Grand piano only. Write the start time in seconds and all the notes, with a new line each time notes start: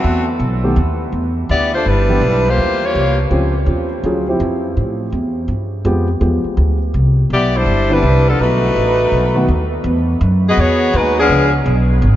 0.64 D#3 A3 B3 G4
2.09 E3 B3 D4 G4
3.31 F3 C4 C#4 G4
3.67 F3 C4 C#4 G4
4.05 F#3 C#4 F4 G#4
4.28 F3 C4 E4 G4
5.85 F3 G#3 B3 G4
6.21 F3 G#3 B3 G4
7.90 D3 B3 C4 E4
9.35 D#3 A3 B3 F#4